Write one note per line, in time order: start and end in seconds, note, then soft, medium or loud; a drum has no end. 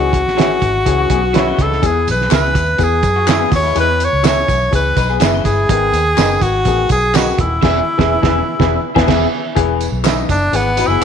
0.00 0.26 C#2 medium
0.00 0.17 E3 medium
0.00 0.18 C#4 medium
0.00 1.63 F#4 medium
0.00 0.18 G#4 loud
0.13 kick medium
0.13 closed hi-hat medium
0.26 0.56 A1 medium
0.26 snare soft
0.37 0.66 E3 medium
0.37 0.66 C#4 medium
0.37 0.48 E4 medium
0.37 0.66 G#4 loud
0.37 0.48 G#4 medium
0.37 0.48 C#5 medium
0.37 0.49 E5 medium
0.37 snare loud
0.37 closed hi-hat medium
0.62 0.82 G#1 medium
0.62 kick medium
0.62 closed hi-hat medium
0.86 1.06 C#2 loud
0.86 1.14 E3 medium
0.86 1.14 C#4 medium
0.86 1.15 G#4 medium
0.86 kick medium
0.86 closed hi-hat medium
0.99 1.10 F#4 medium
1.10 1.51 B1 medium
1.10 1.22 B3 medium
1.10 1.22 G#4 medium
1.10 kick medium
1.10 closed hi-hat medium
1.22 1.45 F#4 medium
1.33 1.63 E3 medium
1.33 1.63 C#4 medium
1.33 1.45 E4 medium
1.33 1.45 G#4 medium
1.33 1.63 B4 medium
1.33 1.45 C#5 medium
1.33 1.45 E5 medium
1.33 snare loud
1.33 closed hi-hat medium
1.47 1.81 G#3 medium
1.47 1.81 E4 medium
1.59 1.79 C#2 medium
1.59 1.87 A4 medium
1.59 kick medium
1.59 snare soft
1.59 closed hi-hat medium
1.72 snare soft
1.82 2.09 E2 medium
1.82 2.11 E3 medium
1.82 2.11 B3 medium
1.82 2.11 G#4 loud
1.82 2.08 G#4 medium
1.82 kick loud
1.82 closed hi-hat medium
1.82 tambourine soft
2.07 2.28 B1 medium
2.07 2.31 B4 medium
2.07 closed hi-hat medium
2.07 tambourine soft
2.21 snare soft
2.30 2.52 C#2 medium
2.30 2.59 E3 medium
2.30 2.59 B3 medium
2.30 2.42 E4 medium
2.30 2.42 G#4 medium
2.30 2.60 G#4 medium
2.30 2.42 B4 medium
2.30 2.85 B4 loud
2.30 2.42 E5 medium
2.30 snare loud
2.30 clap medium
2.30 closed hi-hat medium
2.30 tambourine medium
2.55 2.76 D#2 medium
2.55 kick medium
2.55 closed hi-hat medium
2.55 tambourine soft
2.78 3.03 E2 loud
2.78 3.07 E3 medium
2.78 3.07 B3 medium
2.78 3.08 G#4 medium
2.78 kick medium
2.78 closed hi-hat medium
2.78 tambourine soft
2.83 3.54 G#4 medium
3.03 3.44 F#2 loud
3.03 kick medium
3.03 closed hi-hat medium
3.03 tambourine medium
3.16 3.39 F#4 medium
3.27 3.56 E3 medium
3.27 3.56 B3 medium
3.27 3.38 E4 medium
3.27 3.39 G#4 medium
3.27 3.57 G#4 medium
3.27 3.39 B4 medium
3.27 3.39 E5 medium
3.27 snare loud
3.27 clap medium
3.27 closed hi-hat medium
3.27 tambourine medium
3.39 3.52 B3 medium
3.39 3.51 G#4 medium
3.51 3.72 D#2 medium
3.51 3.63 F#4 medium
3.51 3.76 C#5 loud
3.51 kick medium
3.51 snare soft
3.51 open hi-hat medium
3.51 tambourine soft
3.63 3.87 G#3 medium
3.63 3.87 E4 medium
3.75 4.07 E2 medium
3.75 4.04 E3 loud
3.75 4.05 B3 medium
3.75 4.05 B4 loud
3.75 closed hi-hat loud
3.75 tambourine soft
3.80 4.06 B4 loud
4.00 closed hi-hat medium
4.00 tambourine soft
4.04 4.26 C#5 loud
4.13 4.43 C#2 medium
4.23 4.52 E3 medium
4.23 4.52 B3 medium
4.23 4.35 E4 medium
4.23 4.53 G#4 medium
4.23 4.36 G#4 medium
4.23 4.36 B4 medium
4.23 4.36 E5 medium
4.23 snare loud
4.23 clap medium
4.23 closed hi-hat medium
4.23 tambourine medium
4.28 4.71 C#5 medium
4.48 4.69 B1 medium
4.48 kick medium
4.48 closed hi-hat medium
4.48 tambourine soft
4.71 4.93 C#2 medium
4.71 5.00 E3 medium
4.71 5.01 B3 medium
4.71 5.01 G#4 medium
4.71 kick medium
4.71 closed hi-hat medium
4.71 tambourine soft
4.75 5.17 B4 medium
4.96 5.17 B1 medium
4.96 5.09 D#4 medium
4.96 5.09 B4 medium
4.96 kick medium
4.96 closed hi-hat medium
4.96 tambourine medium
5.10 5.33 B3 medium
5.10 5.32 G#4 medium
5.20 5.42 F#1 medium
5.20 5.49 E3 medium
5.20 5.50 B3 medium
5.20 5.32 E4 medium
5.20 5.32 G#4 medium
5.20 5.50 B4 medium
5.20 5.32 B4 medium
5.20 5.32 E5 medium
5.20 snare loud
5.20 clap medium
5.20 closed hi-hat medium
5.20 tambourine medium
5.33 5.68 G#3 medium
5.33 5.68 E4 medium
5.44 5.65 G1 medium
5.44 6.44 G#4 loud
5.44 kick medium
5.44 closed hi-hat medium
5.44 tambourine soft
5.69 5.90 G#1 loud
5.69 5.98 D#3 medium
5.69 5.98 B3 medium
5.69 5.98 G#4 loud
5.69 kick loud
5.69 closed hi-hat loud
5.93 6.14 D#2 loud
5.93 closed hi-hat medium
5.93 tambourine soft
6.17 6.38 F#1 loud
6.17 6.46 D#3 medium
6.17 6.46 B3 medium
6.17 6.28 D#4 medium
6.17 6.29 G#4 medium
6.17 6.46 G#4 medium
6.17 6.29 B4 medium
6.17 6.29 D#5 medium
6.17 snare loud
6.17 clap medium
6.17 closed hi-hat medium
6.17 tambourine medium
6.41 6.62 G#1 medium
6.41 6.91 F#4 loud
6.41 kick medium
6.41 closed hi-hat medium
6.41 tambourine soft
6.65 6.86 A1 loud
6.65 6.95 D#3 medium
6.65 6.95 B3 medium
6.65 6.95 G#4 medium
6.65 kick medium
6.65 closed hi-hat medium
6.65 tambourine soft
6.89 7.31 B1 medium
6.89 7.17 G#4 loud
6.89 kick medium
6.89 closed hi-hat medium
6.89 tambourine medium
7.14 7.43 D#3 medium
7.14 7.43 B3 medium
7.14 7.25 D#4 medium
7.14 7.42 F#4 medium
7.14 7.25 G#4 medium
7.14 7.44 G#4 medium
7.14 7.26 B4 medium
7.14 7.26 D#5 medium
7.14 snare loud
7.14 clap medium
7.14 closed hi-hat medium
7.14 tambourine medium
7.38 7.59 D#1 medium
7.38 9.09 E4 medium
7.38 kick loud
7.38 closed hi-hat medium
7.62 7.80 E1 medium
7.62 7.79 E3 loud
7.62 7.79 B3 loud
7.62 7.79 E4 loud
7.62 7.79 G#4 loud
7.62 7.80 G#4 loud
7.62 7.80 B4 loud
7.62 7.80 E5 loud
7.62 kick loud
7.62 snare loud
7.62 crash medium
7.98 8.16 E1 medium
7.98 8.15 E3 loud
7.98 8.15 B3 medium
7.98 8.15 E4 medium
7.98 8.16 G#4 medium
7.98 8.16 B4 medium
7.98 8.16 E5 medium
7.98 kick loud
7.98 snare loud
8.22 8.40 E1 loud
8.22 8.39 E3 loud
8.22 8.39 B3 medium
8.22 8.40 E4 loud
8.22 8.40 G#4 loud
8.22 8.40 G#4 medium
8.22 8.40 B4 loud
8.22 8.41 E5 loud
8.22 kick loud
8.22 snare loud
8.59 8.76 E1 medium
8.59 8.76 E3 loud
8.59 8.76 B3 medium
8.59 8.76 E4 loud
8.59 8.77 G#4 loud
8.59 8.77 G#4 medium
8.59 8.77 B4 loud
8.59 8.77 E5 medium
8.59 kick medium
8.59 snare medium
8.95 9.06 E1 loud
8.95 9.06 E3 loud
8.95 9.06 B3 loud
8.95 9.06 E4 medium
8.95 9.06 G#4 medium
8.95 9.07 B4 loud
8.95 9.07 E5 medium
8.95 9.06 G#5 loud
8.95 kick loud
8.95 snare loud
9.07 9.25 E1 medium
9.07 9.24 E3 medium
9.07 9.24 B3 medium
9.07 9.25 B3 loud
9.07 9.24 E4 loud
9.07 9.24 G#4 loud
9.07 9.25 G#4 loud
9.07 9.25 B4 medium
9.07 9.25 E5 medium
9.07 9.25 G#5 medium
9.07 kick medium
9.07 snare loud
9.07 crash medium
9.55 9.87 E1 medium
9.55 9.85 E3 loud
9.55 9.85 B3 loud
9.55 9.85 G#4 loud
9.55 kick loud
9.55 closed hi-hat loud
9.81 closed hi-hat medium
9.81 tambourine soft
9.92 10.23 B1 medium
10.04 10.33 E3 medium
10.04 10.33 B3 medium
10.04 10.33 D#4 loud
10.04 10.15 E4 medium
10.04 10.16 G#4 medium
10.04 10.16 B4 medium
10.04 10.16 E5 medium
10.04 snare loud
10.04 clap medium
10.04 closed hi-hat medium
10.04 tambourine medium
10.29 10.50 F#1 medium
10.29 10.57 D4 loud
10.29 kick medium
10.29 closed hi-hat medium
10.29 tambourine medium
10.52 10.84 G#1 medium
10.52 10.67 E3 medium
10.52 10.68 B3 medium
10.52 10.89 B3 loud
10.52 10.68 G#4 medium
10.52 closed hi-hat medium
10.52 tambourine soft
10.76 10.91 E3 medium
10.76 10.92 B3 medium
10.76 10.90 D#4 medium
10.76 10.92 F#4 medium
10.76 10.89 B4 medium
10.76 closed hi-hat medium
10.76 tambourine medium
10.87 10.99 F#1 medium
10.87 11.04 B3 medium
10.87 11.04 E4 medium
10.87 11.04 G#4 medium
11.01 11.04 E3 medium
11.01 11.04 E4 medium